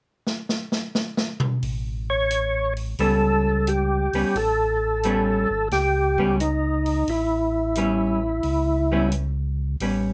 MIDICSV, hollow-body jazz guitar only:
0, 0, Header, 1, 2, 480
1, 0, Start_track
1, 0, Tempo, 681818
1, 1144, Time_signature, 4, 2, 24, 8
1, 7133, End_track
2, 0, Start_track
2, 0, Title_t, "Hollow-body jazz guitar"
2, 0, Program_c, 0, 26
2, 2108, Note_on_c, 0, 55, 56
2, 2114, Note_on_c, 0, 59, 63
2, 2119, Note_on_c, 0, 61, 62
2, 2847, Note_off_c, 0, 55, 0
2, 2850, Note_off_c, 0, 59, 0
2, 2852, Note_off_c, 0, 61, 0
2, 2920, Note_on_c, 0, 55, 53
2, 2922, Note_on_c, 0, 59, 60
2, 2926, Note_on_c, 0, 61, 61
2, 3054, Note_off_c, 0, 55, 0
2, 3055, Note_off_c, 0, 59, 0
2, 3057, Note_off_c, 0, 61, 0
2, 3554, Note_on_c, 0, 55, 69
2, 3559, Note_on_c, 0, 59, 68
2, 3565, Note_on_c, 0, 61, 75
2, 3843, Note_off_c, 0, 55, 0
2, 3845, Note_off_c, 0, 59, 0
2, 3848, Note_off_c, 0, 61, 0
2, 4355, Note_on_c, 0, 55, 59
2, 4360, Note_on_c, 0, 59, 67
2, 4363, Note_on_c, 0, 61, 65
2, 4491, Note_off_c, 0, 55, 0
2, 4494, Note_off_c, 0, 59, 0
2, 4495, Note_off_c, 0, 61, 0
2, 5468, Note_on_c, 0, 55, 51
2, 5474, Note_on_c, 0, 59, 56
2, 5480, Note_on_c, 0, 61, 65
2, 5760, Note_off_c, 0, 55, 0
2, 5763, Note_off_c, 0, 59, 0
2, 5765, Note_off_c, 0, 61, 0
2, 6277, Note_on_c, 0, 55, 67
2, 6281, Note_on_c, 0, 59, 66
2, 6286, Note_on_c, 0, 61, 78
2, 6412, Note_off_c, 0, 55, 0
2, 6414, Note_off_c, 0, 59, 0
2, 6416, Note_off_c, 0, 61, 0
2, 6909, Note_on_c, 0, 55, 52
2, 6915, Note_on_c, 0, 59, 53
2, 6919, Note_on_c, 0, 61, 53
2, 7133, Note_off_c, 0, 55, 0
2, 7133, Note_off_c, 0, 59, 0
2, 7133, Note_off_c, 0, 61, 0
2, 7133, End_track
0, 0, End_of_file